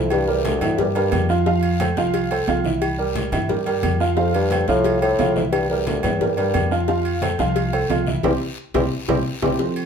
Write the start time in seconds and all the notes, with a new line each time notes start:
Already playing: C2 F2 E3 E4 E5
0.10 G2, cowbell, high conga, low agogo, long guiro
0.28 E2 G3 G4 A#4, high conga
0.45 D2, cowbell, high conga, low timbale, low agogo, short guiro
0.61 G2 E3 E4 E5, cowbell, low conga, low agogo, short guiro
0.78 E2 G3 G4 A#4, cowbell, high conga, low conga, long guiro
0.95 G2 G3 G4 A#4, cowbell, high conga, low agogo
1.12 F2, cowbell, high conga, low timbale, low agogo, short guiro
1.29 F3 F4 F5, high conga, short guiro
1.46 F3 F4 F5, cowbell, high conga, long guiro
1.63 high conga, low agogo
1.80 A3 A4 C5, cowbell, high conga, low timbale, low agogo, short guiro
1.96 C2 F3 F4 F5, cowbell, high conga, short guiro
2.14 cowbell, high conga, low agogo, long guiro
2.31 A3 A4 C5, high conga, low agogo
2.47 C2 F3 F4 F5, cowbell, high conga, low timbale, low agogo, short guiro
2.64 E3 E4 E5, high conga, short guiro
2.82 cowbell, low agogo, long guiro
2.98 G3 G4 A#4, high conga
3.15 cowbell, high conga, low timbale, low agogo, short guiro
3.32 G2 E3 E4 E5, cowbell, low conga, low agogo, short guiro
3.49 G3 G4 A#4, cowbell, high conga, low conga, long guiro
3.66 G3 G4 A#4, cowbell, high conga, low agogo
3.83 F2, cowbell, high conga, low timbale, low agogo, short guiro
4.00 F3 F4 F5, high conga, short guiro
4.17 F2 F3 F4 F5, cowbell, high conga, long guiro
4.34 G2, high conga, low agogo
4.51 A3 A4 C5, cowbell, high conga, low timbale, low agogo, short guiro
4.68 C2 A2 F3 F4 F5, cowbell, high conga, short guiro
4.84 cowbell, high conga, low agogo, long guiro
5.01 A2 A3 A4 C5, high conga, low agogo
5.19 C2 F3 F4 F5, cowbell, high conga, low timbale, low agogo, short guiro
5.35 F2 E3 E4 E5, high conga, short guiro
5.52 G2, cowbell, high conga, low agogo, long guiro
5.69 E2 G3 G4 A#4, high conga
5.86 D2, cowbell, high conga, low timbale, low agogo, short guiro
6.03 E2 G2 E3 E4 E5, cowbell, low conga, low agogo, short guiro
6.21 G3 G4 A#4, cowbell, high conga, low conga, long guiro
6.37 G2 G3 G4 A#4, cowbell, high conga, low agogo
6.54 F2, cowbell, high conga, low timbale, low agogo, short guiro
6.71 F3 F4 F5, high conga, short guiro
6.88 F3 F4 F5, cowbell, high conga, long guiro
7.05 high conga, low agogo
7.22 A3 A4 C5, cowbell, high conga, low timbale, low agogo, short guiro
7.39 C2 F3 F4 F5, cowbell, high conga, short guiro
7.56 cowbell, high conga, low agogo, long guiro
7.73 A3 A4 C5, high conga, low agogo
7.89 C2 F3 F4 F5, cowbell, high conga, low timbale, low agogo, short guiro
8.07 E3 E4 E5, high conga, short guiro
8.23 C2 E2 C4 E4 G4, cowbell, high conga, high timbale, long guiro
8.74 C2 E2 C4 E4 G4, cowbell, high conga, high timbale, long guiro
9.08 C2 E2 C4 E4 G4, cowbell, high conga, high timbale, long guiro
9.42 C2 E2 C4 E4 G4, cowbell, high conga, high timbale, long guiro
9.59 F3 A3 C4, cowbell, high conga, long guiro
9.76 high conga, low agogo